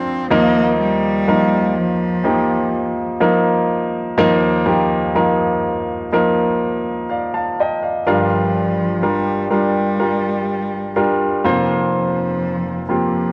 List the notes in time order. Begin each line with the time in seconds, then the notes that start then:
Already playing: D2 D3 F3 C4 D4 A4 A#4
0.30 D#2 F3 A#3 D#4 A#4
0.80 G3
1.28 F3 A#3 D#4 A#4
1.77 F3
2.24 F3 A#3 D#4 G4
3.20 F3 A#3 D#4 A#4
4.18 D#2 F3 A#3 D#4 A#4
4.66 F3 A#3 D#4 G4
5.15 F3 A#3 D#4 A#4
6.12 F3 A#3 D#4 A#4
7.10 D5 F5
7.34 F5 A5
7.60 D#5 G5
7.83 D5 F5
8.06 G1 G2 F3 G3 D4 F4 A#4
9.02 G3 D4 F4 A#4
9.50 G3 D4 F4 A#4
9.99 G3 D4 F4 A#4
10.96 G3 D4 F4 A#4
11.44 F1 F2 A#3 C4 F4 C5
11.95 F3
12.89 F3 A#3 C4 F4 G4